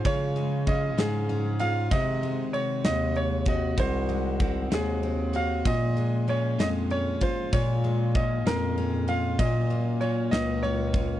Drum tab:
RD |xxxxxx|xxxxxx|xxxxxx|xxxxxx|
SD |---o--|---o--|---o--|---o--|
BD |o-o---|o----o|o-o---|o----o|

RD |xxxxxx|xxxxxx|
SD |---o--|---o--|
BD |o-o---|o----o|